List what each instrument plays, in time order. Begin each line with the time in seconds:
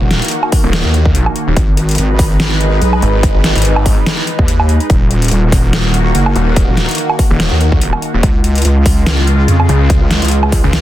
Already playing: analog synth pad D#3 A#3 F#4
0.01 wobble bass D#1
0.11 snare, closed hi-hat
0.22 closed hi-hat
0.25 closed hi-hat
0.28 closed hi-hat
0.31 closed hi-hat
0.43 low woodblock
0.52 kick, open hi-hat
0.64 detuned saw bass D#1
0.73 snare, closed hi-hat
0.85 detuned saw bass D#2
0.94 closed hi-hat
1.05 kick
1.15 closed hi-hat
1.26 low woodblock
1.36 closed hi-hat
1.47 detuned saw bass D#1
1.56 wobble bass G#1, analog synth pad G#3 D#4 B4, kick, closed hi-hat
1.77 closed hi-hat
1.89 closed hi-hat
1.91 closed hi-hat
1.95 closed hi-hat
1.98 wobble bass G#1, closed hi-hat
2.19 kick, open hi-hat
2.40 snare, closed hi-hat
2.61 closed hi-hat
2.81 wobble bass B1, closed hi-hat
2.93 low woodblock
3.02 detuned saw bass G#1, closed hi-hat
3.23 kick, closed hi-hat
3.35 wobble bass G#1
3.44 snare, closed hi-hat
3.55 detuned saw bass G#1, closed hi-hat
3.58 closed hi-hat
3.62 closed hi-hat
3.65 closed hi-hat
3.76 low woodblock
3.86 kick, open hi-hat
4.06 snare, closed hi-hat
4.27 closed hi-hat
4.39 wobble bass D#2, kick
4.48 closed hi-hat
4.60 low woodblock
4.69 closed hi-hat
4.80 closed hi-hat
4.90 wobble bass D#1, analog synth pad D#3 A#3 F#4, kick, closed hi-hat
5.11 closed hi-hat
5.22 closed hi-hat
5.24 closed hi-hat
5.28 closed hi-hat
5.31 wobble bass D#1, closed hi-hat
5.52 kick, open hi-hat
5.73 snare, closed hi-hat
5.94 closed hi-hat
6.15 wobble bass F#1, closed hi-hat
6.26 low woodblock
6.36 detuned saw bass D#1, closed hi-hat
6.56 kick, closed hi-hat
6.68 wobble bass D#1
6.77 snare, closed hi-hat
6.89 closed hi-hat
6.91 closed hi-hat
6.95 closed hi-hat
6.98 closed hi-hat
7.10 low woodblock
7.19 kick, open hi-hat
7.30 detuned saw bass D#1
7.40 snare, closed hi-hat
7.51 detuned saw bass D#2
7.61 closed hi-hat
7.72 kick
7.81 closed hi-hat
7.93 low woodblock
8.02 closed hi-hat
8.14 detuned saw bass D#1
8.23 wobble bass C#2, analog synth pad C#3 G#3 F4, kick, closed hi-hat
8.44 closed hi-hat
8.55 closed hi-hat
8.58 closed hi-hat
8.62 closed hi-hat
8.65 wobble bass C#2, closed hi-hat
8.86 kick, open hi-hat
9.06 snare, closed hi-hat
9.27 closed hi-hat
9.48 wobble bass F2, closed hi-hat
9.60 low woodblock
9.69 detuned saw bass C#2, closed hi-hat
9.90 kick, closed hi-hat
10.01 wobble bass C#2
10.11 snare, closed hi-hat
10.22 wobble bass C#2, closed hi-hat
10.25 closed hi-hat
10.28 closed hi-hat
10.31 closed hi-hat
10.43 low woodblock
10.52 kick, open hi-hat
10.64 detuned saw bass C#2
10.73 snare, closed hi-hat